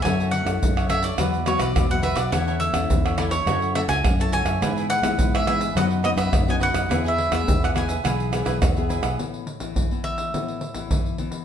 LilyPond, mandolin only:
\new Staff \with { instrumentName = "Mandolin" } { \time 4/4 \key a \major \tempo 4 = 105 gis''8 fis''4 e''16 d''8. cis''16 d''8 fis''16 e''16 d''16 | fis''8 e''4 d''16 cis''8. e''16 gis''8 a''16 gis''8~ | gis''8 fis''8. e''16 e''8 fis''8 dis''16 e''8 gis''16 fis''8~ | fis''16 e''8 e''8 fis''16 gis''4. r4 |
r4. e''2 r8 | }